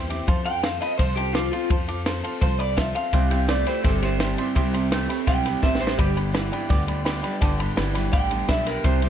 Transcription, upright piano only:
0.10 0.21 E5 medium
0.10 0.21 G5 medium
0.10 0.21 D6 loud
0.27 0.38 F5 loud
0.27 0.39 A5 loud
0.27 0.39 C6 loud
0.46 0.56 F5 medium
0.46 0.57 A5 medium
0.46 0.57 C6 medium
0.63 0.74 F5 medium
0.63 0.74 A5 medium
0.63 0.75 C6 medium
0.81 0.92 F5 medium
0.81 0.92 A5 medium
0.81 0.92 B5 medium
0.99 1.10 F5 medium
0.99 1.10 A5 medium
0.99 1.10 C6 loud
1.17 1.27 F5 medium
1.17 1.28 A5 medium
1.17 1.28 C6 medium
1.34 1.45 F5 medium
1.34 1.45 A5 medium
1.34 1.46 D6 loud
1.52 1.63 F5 medium
1.52 1.63 A5 medium
1.52 1.64 C6 medium
1.70 1.81 F5 medium
1.70 1.81 A5 medium
1.70 1.81 C6 loud
1.88 1.99 F5 medium
1.88 1.99 A5 medium
1.88 1.99 D6 loud
2.06 2.17 F5 medium
2.06 2.17 A5 medium
2.06 2.17 C6 loud
2.23 2.34 F5 medium
2.23 2.35 A5 medium
2.23 2.35 C6 loud
2.42 2.52 F5 medium
2.42 2.53 A5 medium
2.42 2.53 C6 loud
2.59 2.70 F5 medium
2.59 2.70 A5 medium
2.59 2.70 B5 medium
2.77 2.88 F5 medium
2.77 2.88 A5 medium
2.77 2.88 C6 loud
2.95 3.06 F5 medium
2.95 3.06 A5 medium
2.95 3.06 C6 medium
3.13 3.24 E5 medium
3.13 3.24 G5 medium
3.13 3.24 C6 loud
3.31 3.42 E5 medium
3.31 3.42 G5 medium
3.31 3.42 C6 medium
3.49 3.59 E5 medium
3.49 3.60 G5 medium
3.49 3.60 C6 medium
3.66 3.77 E5 medium
3.66 3.78 G5 medium
3.66 3.78 B5 medium
3.84 3.95 E5 medium
3.84 3.95 G5 medium
3.84 3.95 C6 loud
4.02 4.13 E5 medium
4.02 4.13 G5 medium
4.02 4.14 C6 medium
4.20 4.31 E5 loud
4.20 4.31 G5 medium
4.20 4.31 C6 loud
4.38 4.49 E5 loud
4.38 4.49 G5 medium
4.38 4.49 C6 loud
4.55 4.66 E5 loud
4.55 4.67 G5 loud
4.55 4.67 C6 loud
4.73 4.84 E5 medium
4.73 4.84 G5 medium
4.73 4.85 C6 loud
4.91 5.02 E5 medium
4.91 5.02 G5 medium
4.91 5.02 C6 medium
5.09 5.20 E5 medium
5.09 5.20 G5 medium
5.09 5.20 B5 loud
5.26 5.38 E5 loud
5.26 5.38 G5 medium
5.26 5.38 C6 loud
5.45 5.56 E5 medium
5.45 5.56 G5 medium
5.45 5.56 B5 medium
5.63 5.74 E5 medium
5.63 5.74 G5 medium
5.63 5.74 C6 loud
5.80 5.91 E5 medium
5.80 5.92 G5 medium
5.80 5.92 C6 medium
5.98 6.09 D5 medium
5.98 6.09 G5 medium
5.98 6.10 B5 loud
6.16 6.27 D5 medium
6.16 6.27 G5 medium
6.16 6.27 B5 medium
6.33 6.45 D5 medium
6.33 6.45 G5 medium
6.33 6.45 B5 loud
6.52 6.63 D5 loud
6.52 6.63 G5 medium
6.52 6.63 B5 loud
6.69 6.81 D5 loud
6.69 6.81 G5 loud
6.69 6.81 D6 loud
6.88 6.99 D5 medium
6.88 6.99 G5 medium
6.88 6.99 B5 loud
7.05 7.16 D5 loud
7.05 7.16 G5 loud
7.05 7.16 B5 loud
7.23 7.34 D5 loud
7.23 7.34 G5 medium
7.23 7.34 B5 loud
7.41 7.52 D5 loud
7.41 7.52 G5 loud
7.41 7.52 A5 loud
7.59 7.70 D5 medium
7.59 7.70 G5 medium
7.59 7.70 B5 loud
7.77 7.88 D5 medium
7.77 7.88 G5 medium
7.77 7.88 B5 loud
7.94 8.05 D5 loud
7.94 8.06 G5 medium
7.94 8.06 B5 loud
8.12 8.23 D5 medium
8.12 8.23 G5 medium
8.12 8.24 B5 loud
8.30 8.41 D5 medium
8.30 8.42 G5 medium
8.30 8.42 A5 medium
8.48 8.59 D5 loud
8.48 8.59 G5 medium
8.48 8.60 B5 loud
8.66 8.77 D5 medium
8.66 8.77 G5 medium
8.66 8.77 B5 medium
8.84 8.95 E5 medium
8.84 8.95 G5 medium
8.84 8.95 C6 loud
9.01 9.09 E5 medium
9.01 9.09 G5 medium
9.01 9.09 C6 medium

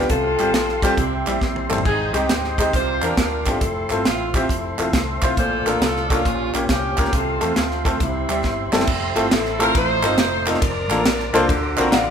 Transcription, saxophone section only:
0.00 0.11 B4 loud
0.10 0.94 C4 medium
0.10 0.94 F4 medium
0.10 0.94 A4 loud
0.97 1.27 C4 medium
0.97 1.27 E4 medium
0.97 1.26 G4 medium
1.28 1.82 G3 medium
1.28 1.82 C4 medium
1.28 1.68 E4 medium
1.87 2.14 C4 medium
1.87 2.14 D#4 medium
1.87 2.13 G#4 loud
2.15 2.70 C4 medium
2.15 2.69 D#4 medium
2.15 2.56 G4 medium
2.60 2.74 C5 medium
2.73 3.03 F4 medium
2.73 3.57 G4 medium
2.73 3.02 C5 loud
3.04 3.58 D4 medium
3.04 3.58 F4 medium
3.04 3.48 A#4 loud
3.48 4.31 C4 medium
3.48 4.31 E4 medium
3.48 4.07 A4 loud
4.07 4.35 F4 medium
4.35 5.18 A3 medium
4.35 5.19 C4 medium
4.35 4.94 E4 medium
5.22 5.36 F4 medium
5.39 6.10 F4 medium
5.39 5.83 A4 medium
5.39 5.65 C5 loud
5.67 5.81 A#4 medium
5.84 6.11 A4 medium
6.10 6.52 C#4 medium
6.10 6.52 F4 medium
6.69 7.09 C#4 medium
6.69 7.13 G4 medium
7.13 7.56 C4 medium
7.13 7.57 F4 medium
7.13 7.57 A4 medium
7.58 7.98 A3 medium
7.58 7.98 C4 medium
7.58 8.01 F4 medium
8.02 8.85 G3 medium
8.02 8.74 C4 medium
8.02 8.70 E4 medium
8.75 9.58 C4 medium
8.75 9.57 E4 medium
8.75 9.29 G4 medium
9.33 9.61 A4 loud
9.61 9.76 A#4 loud
9.76 10.59 D#4 medium
9.76 10.59 F4 medium
9.76 10.44 C5 loud
10.48 11.76 D4 medium
10.48 11.79 A#4 loud

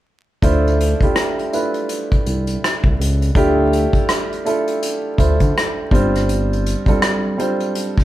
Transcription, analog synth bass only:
0.43 0.94 D2 loud
1.01 1.07 C2 soft
2.26 2.57 C2 medium
2.84 2.96 C2 medium
2.99 3.31 C#2 medium
3.36 3.87 D2 loud
3.94 3.99 D2 soft
5.19 5.38 D2 medium
5.41 5.53 D3 medium
5.92 6.75 G1 medium
6.87 6.92 C2 soft

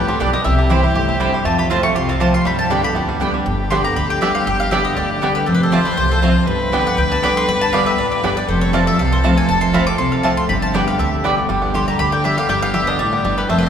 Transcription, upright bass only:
0.00 0.16 A1 medium
0.20 0.42 B1 medium
0.45 0.83 C2 medium
0.95 1.33 G1 medium
1.45 1.84 F2 medium
1.95 2.33 C2 medium
2.45 2.84 G2 loud
2.96 3.34 D2 medium
3.46 3.84 G1 medium
3.96 4.34 D2 medium
4.46 4.85 G1 loud
4.97 5.35 D2 medium
5.48 5.86 F1 medium
5.97 6.35 C2 medium
6.47 6.85 G1 medium
6.98 7.36 D2 medium
7.48 7.86 G1 medium
7.98 8.19 A1 medium
8.23 8.44 G1 medium
8.48 8.86 F1 loud
8.99 9.37 C2 medium
9.49 9.87 F1 medium
9.98 10.37 C2 medium
10.49 10.87 G1 medium
10.99 11.37 D2 medium
11.49 11.87 G1 medium
11.99 12.38 D2 medium
12.49 12.87 G1 loud
12.99 13.21 A1 medium
13.24 13.46 G1 medium
13.49 13.69 F1 medium

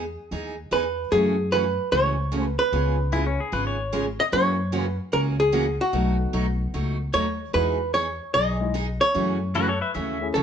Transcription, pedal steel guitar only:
3.13 3.26 E4 medium
3.27 3.39 C#4 medium
3.40 3.53 G#4 medium
3.53 3.66 B4 medium
3.67 4.05 C#5 medium
9.55 9.68 F#4 medium
9.55 9.68 B4 medium
9.68 9.80 A4 medium
9.68 9.81 C#5 medium
9.81 9.94 B4 medium
9.81 9.93 E5 medium
9.95 10.27 E5 medium

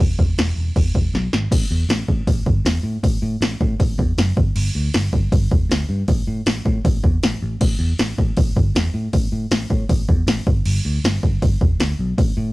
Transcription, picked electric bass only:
0.00 0.12 E1 loud
0.18 0.31 E1 loud
0.38 0.50 E1 loud
0.56 0.69 E1 medium
0.76 0.89 E1 medium
0.94 1.07 E1 medium
1.14 1.26 B1 medium
1.33 1.46 G#1 medium
1.51 1.64 A1 medium
1.71 1.83 E2 medium
1.89 2.02 A1 loud
2.08 2.21 A1 medium
2.27 2.40 A1 loud
2.46 2.59 G1 medium
2.65 2.78 E2 loud
2.83 2.97 A2 medium
3.03 3.16 A1 medium
3.22 3.35 A2 loud
3.41 3.54 A1 medium
3.61 3.74 A2 loud
3.80 3.93 A1 loud
3.98 4.11 E2 medium
4.18 4.31 F#1 medium
4.36 4.49 G1 medium
4.56 4.69 G1 medium
4.75 4.88 D2 medium
4.95 5.07 G1 medium
5.13 5.26 G1 loud
5.32 5.45 G1 loud
5.51 5.64 E1 medium
5.69 5.83 D2 medium
5.89 6.02 G2 medium
6.08 6.21 A1 medium
6.27 6.40 A2 medium
6.46 6.59 A1 medium
6.65 6.78 A2 medium
6.85 6.97 A1 loud
7.03 7.16 E2 medium
7.23 7.36 A1 medium
7.42 7.55 A1 medium
7.61 7.74 A1 medium
7.79 7.92 E2 medium
7.99 8.12 A1 medium
8.18 8.31 A1 medium
8.37 8.50 A1 medium
8.56 8.69 G1 medium
8.75 8.88 E2 medium
8.94 9.07 A2 medium
9.13 9.26 A1 loud
9.32 9.45 A2 medium
9.51 9.64 A1 loud
9.70 9.83 A2 medium
9.89 10.02 A1 medium
10.09 10.21 E2 medium
10.27 10.40 A1 loud
10.47 10.59 G1 medium
10.66 10.78 G1 loud
10.85 10.98 D2 loud
11.04 11.17 G1 loud
11.23 11.36 G1 medium
11.42 11.55 G1 loud
11.61 11.74 E1 medium
11.80 11.92 D2 medium
11.99 12.12 B1 medium
12.18 12.30 A1 loud
12.37 12.50 A2 medium

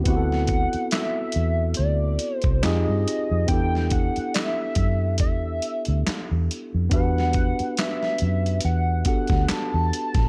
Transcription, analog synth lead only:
0.07 0.88 F#5 loud
0.92 1.73 E5 loud
1.77 2.36 D5 medium
2.36 2.64 C5 medium
2.62 3.48 D#5 medium
3.48 3.93 G5 loud
3.92 4.34 F#5 medium
4.34 5.16 E5 loud
5.20 6.45 E5 medium
6.93 7.74 F#5 loud
7.79 8.60 E5 medium
8.65 9.04 F#5 medium
9.07 9.52 F#5 medium
9.51 10.29 A5 loud

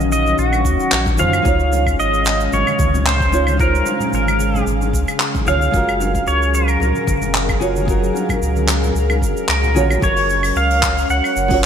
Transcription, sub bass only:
0.00 0.34 A#1 medium
0.38 0.66 A#1 medium
0.65 0.77 D#2 loud
0.92 1.20 A#1 medium
1.19 1.41 F#2 medium
1.45 1.95 C#2 loud
1.99 2.49 G#1 medium
2.52 2.64 G#1 medium
2.79 3.83 C#2 loud
4.13 4.63 G#1 medium
4.67 4.95 G#1 medium
4.93 5.05 C#2 loud
5.47 5.69 C#2 medium
5.74 6.24 F#1 loud
6.27 6.77 C#2 medium
6.81 6.93 C#2 medium
7.08 8.11 F#1 loud
8.41 8.91 C#2 medium
8.95 9.24 C#2 medium
9.22 9.34 F#1 loud
9.49 9.77 C#2 medium
9.76 9.98 A#1 loud
10.03 10.52 F#1 medium
10.56 11.06 C#2 medium
11.10 11.21 C#2 medium
11.36 11.66 F#1 loud

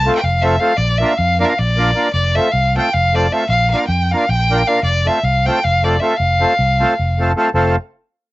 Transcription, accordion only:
0.06 0.18 A3 medium
0.06 0.18 C4 medium
0.06 0.19 F4 medium
0.06 0.19 A4 medium
0.42 0.55 A3 medium
0.42 0.55 C4 medium
0.42 0.56 F4 medium
0.42 0.56 A4 medium
0.60 0.73 A3 medium
0.60 0.73 C4 medium
0.60 0.73 F4 medium
0.60 0.74 A4 medium
1.00 1.13 A#3 medium
1.00 1.13 D4 medium
1.00 1.13 F4 medium
1.00 1.14 A#4 medium
1.40 1.53 A#3 medium
1.40 1.53 D4 medium
1.40 1.54 F4 medium
1.40 1.54 A#4 medium
1.77 1.90 A#3 medium
1.77 1.91 D4 medium
1.77 1.91 F4 medium
1.77 1.91 A#4 medium
1.95 2.08 A#3 medium
1.95 2.08 D4 medium
1.95 2.08 F4 medium
1.95 2.09 A#4 medium
2.36 2.48 A3 medium
2.36 2.49 C4 medium
2.36 2.49 F4 medium
2.36 2.49 A4 medium
2.76 2.88 A3 medium
2.76 2.89 C4 medium
2.76 2.89 F4 medium
2.76 2.89 A4 medium
3.14 3.26 A3 medium
3.14 3.26 C4 medium
3.14 3.27 F4 medium
3.14 3.27 A4 medium
3.31 3.43 A3 medium
3.31 3.44 C4 medium
3.31 3.44 F4 medium
3.31 3.45 A4 medium
3.73 3.84 A#3 medium
3.73 3.85 D4 medium
3.73 3.85 F4 medium
3.73 3.85 A#4 medium
4.12 4.24 A#3 medium
4.12 4.25 D4 medium
4.12 4.25 F4 medium
4.12 4.25 A#4 medium
4.50 4.62 A#3 medium
4.50 4.62 D4 medium
4.50 4.63 F4 medium
4.50 4.63 A#4 medium
4.67 4.79 A#3 medium
4.67 4.79 D4 medium
4.67 4.80 F4 medium
4.67 4.80 A#4 medium
5.06 5.18 A3 medium
5.06 5.19 C4 medium
5.06 5.19 F4 medium
5.06 5.19 A4 medium
5.46 5.59 A3 medium
5.46 5.59 C4 medium
5.46 5.59 F4 medium
5.46 5.60 A4 medium
5.83 5.96 A3 medium
5.83 5.96 C4 medium
5.83 5.97 F4 medium
5.83 5.97 A4 medium
6.01 6.13 A3 medium
6.01 6.13 C4 medium
6.01 6.14 F4 medium
6.01 6.14 A4 medium
6.40 6.53 A3 medium
6.40 6.53 C4 medium
6.40 6.54 F4 medium
6.40 6.54 A4 medium
6.80 6.93 A3 medium
6.80 6.93 C4 medium
6.80 6.94 F4 medium
6.80 6.94 A4 medium
7.19 7.31 A3 medium
7.19 7.32 C4 medium
7.19 7.32 F4 medium
7.19 7.32 A4 medium
7.36 7.49 A3 medium
7.36 7.49 C4 medium
7.36 7.49 F4 medium
7.36 7.50 A4 medium
7.55 7.75 A3 medium
7.55 7.75 C4 medium
7.55 7.76 F4 medium
7.55 7.75 A4 medium

